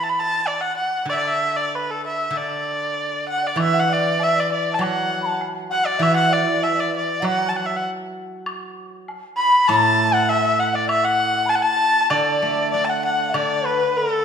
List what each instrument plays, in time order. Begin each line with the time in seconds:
Already playing: guzheng E3
0.03 erhu A5
0.09 erhu B5
0.20 erhu A5
0.47 erhu D5
0.61 erhu F#5
0.77 erhu F#5
1.05 guzheng D3, erhu D5
1.12 erhu E5
1.17 erhu D5
1.26 erhu E5
1.57 erhu D5
1.68 erhu D5
1.75 erhu B4
1.91 erhu A4
2.06 erhu E5
2.31 guzheng D3
2.37 erhu D5
3.28 dizi F#5, erhu F#5
3.42 dizi D5
3.47 erhu D5
3.56 guzheng E3, high woodblock
3.60 dizi E5, erhu E5
3.74 dizi F#5
3.80 erhu F#5
3.90 dizi D5, erhu D5
4.19 dizi E5, erhu E5, low woodblock
4.35 dizi D5
4.40 erhu D5
4.50 dizi D5, erhu D5
4.73 dizi A5, erhu A5
4.79 guzheng F#3, dizi F#5, high woodblock
4.83 erhu F#5
5.22 dizi A5 B5
5.41 low woodblock
5.70 dizi F#5, erhu F#5
5.85 dizi D5, erhu D5
5.99 guzheng E3, dizi E5, erhu E5
6.03 high woodblock
6.12 dizi F#5
6.17 erhu F#5
6.29 dizi D5, erhu D5
6.62 dizi E5, erhu E5, low woodblock
6.76 dizi D5, erhu D5
6.91 dizi D5
6.97 erhu D5
7.20 guzheng F#3, dizi F#5
7.25 erhu F#5, high woodblock
7.49 erhu A5
7.56 erhu F#5
7.66 erhu E5
7.76 erhu F#5
8.46 high woodblock
9.08 low woodblock
9.37 erhu B5, dizi B5
9.68 guzheng A2, erhu A5, dizi A5, high woodblock
10.12 dizi F#5, erhu F#5
10.29 erhu E5, dizi E5, low woodblock
10.59 dizi F#5, erhu F#5
10.74 dizi D5, erhu D5
10.89 dizi E5, erhu E5, high woodblock
11.04 dizi F#5, erhu F#5
11.46 dizi A5 B5, erhu A5
11.50 low woodblock
11.55 erhu F#5
11.61 dizi A5, erhu A5
12.10 guzheng D3, erhu D5, dizi D5, high woodblock
12.42 guzheng A3
12.71 guzheng D4, dizi D5, erhu D5
12.85 dizi F#5, erhu A5
12.90 erhu F#5
13.02 dizi F#5, erhu F#5
13.34 guzheng D3, dizi D5, erhu D5, high woodblock
13.65 dizi B4, erhu B4
13.97 erhu A4, dizi A4